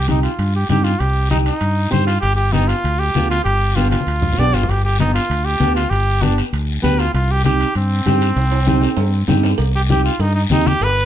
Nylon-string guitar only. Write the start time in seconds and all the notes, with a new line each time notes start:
0.07 C4 D#4 G4
0.69 C4 D#4 G4
1.30 C4 D#4 G4
1.90 C4 D#4 G4
2.52 B3 D4 G4
3.15 B3 D4 F4
3.76 B3 D4 G4
4.39 B3 D4 G4
5.00 B3 D4 G4
5.59 B3 D4 G4
6.22 B3 D4 G4
6.82 B3 D4 G4
7.45 C4 D#4 G4
8.06 C4 D#4 G4
8.67 C4 D#4 G4
9.28 C4 D#4 G4
9.89 C4 D#4 G4
10.50 C4 D#4 G4